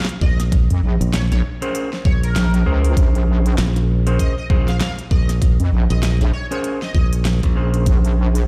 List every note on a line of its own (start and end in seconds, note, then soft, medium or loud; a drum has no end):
0.00 snare medium
0.05 snare loud
0.09 closed hi-hat soft
0.21 0.67 A#1 medium
0.21 0.39 D#5 medium
0.21 kick loud
0.40 snare soft
0.40 closed hi-hat medium
0.52 kick loud
0.52 snare soft
0.52 closed hi-hat medium
0.70 0.81 F2 medium
0.70 closed hi-hat soft
0.83 0.98 A#1 loud
1.01 1.29 A#1 loud
1.01 closed hi-hat medium
1.13 1.25 C#5 medium
1.13 snare loud
1.13 closed hi-hat medium
1.31 1.42 A#1 loud
1.31 1.39 C#5 medium
1.31 snare soft
1.31 closed hi-hat soft
1.62 1.89 C#4 medium
1.62 1.89 G#4 medium
1.62 1.89 A#4 medium
1.62 1.89 C5 loud
1.62 closed hi-hat medium
1.75 closed hi-hat medium
1.93 snare soft
2.05 2.34 A#1 medium
2.05 2.20 C#5 medium
2.05 kick loud
2.23 2.85 A#4 loud
2.23 closed hi-hat medium
2.35 2.64 A#1 loud
2.35 snare loud
2.35 closed hi-hat medium
2.54 closed hi-hat soft
2.66 2.95 C#2 medium
2.66 4.02 C#4 medium
2.66 4.02 G#4 medium
2.66 4.02 A#4 medium
2.66 4.02 C5 medium
2.85 closed hi-hat medium
2.97 3.56 A#1 loud
2.97 kick loud
2.97 closed hi-hat medium
3.15 closed hi-hat soft
3.46 closed hi-hat medium
3.58 4.17 A#1 loud
3.58 snare loud
3.58 closed hi-hat medium
3.76 snare soft
3.76 closed hi-hat soft
4.07 4.34 C#4 medium
4.07 4.34 G#4 medium
4.07 4.34 A#4 medium
4.07 4.34 C5 medium
4.07 closed hi-hat medium
4.19 4.31 D#5 medium
4.19 kick medium
4.19 closed hi-hat medium
4.38 4.46 D#5 medium
4.50 4.79 A#1 medium
4.50 4.70 C#4 loud
4.50 4.70 G#4 medium
4.50 4.70 A#4 medium
4.50 4.70 C5 loud
4.50 kick loud
4.68 4.76 F5 medium
4.68 snare soft
4.68 closed hi-hat medium
4.81 4.92 F5 medium
4.81 snare loud
4.81 closed hi-hat medium
4.99 closed hi-hat soft
5.11 5.57 A#1 medium
5.11 5.29 D#5 medium
5.11 kick loud
5.29 snare soft
5.29 closed hi-hat medium
5.42 kick loud
5.42 snare soft
5.42 closed hi-hat medium
5.60 5.70 F2 medium
5.60 closed hi-hat soft
5.72 5.88 A#1 loud
5.90 6.18 A#1 loud
5.90 5.98 D#5 medium
5.90 closed hi-hat medium
6.03 6.14 D#5 medium
6.03 snare loud
6.03 closed hi-hat medium
6.21 6.32 A#1 loud
6.21 snare soft
6.21 closed hi-hat soft
6.33 6.45 C#5 medium
6.51 6.79 C#4 medium
6.51 6.79 G#4 medium
6.51 6.79 A#4 medium
6.51 6.79 C5 loud
6.51 6.59 C#5 medium
6.51 closed hi-hat medium
6.64 closed hi-hat medium
6.82 6.90 D#5 medium
6.82 snare soft
6.95 7.41 A#1 loud
6.95 7.06 D#5 medium
6.95 kick loud
7.13 closed hi-hat medium
7.25 snare loud
7.25 closed hi-hat medium
7.43 7.85 A#1 medium
7.43 kick medium
7.43 closed hi-hat soft
7.55 8.47 C#4 medium
7.55 8.47 G#4 medium
7.55 8.47 A#4 medium
7.55 8.47 C5 medium
7.74 closed hi-hat medium
7.86 8.46 A#1 loud
7.86 kick loud
7.86 closed hi-hat medium
8.05 closed hi-hat soft
8.35 closed hi-hat soft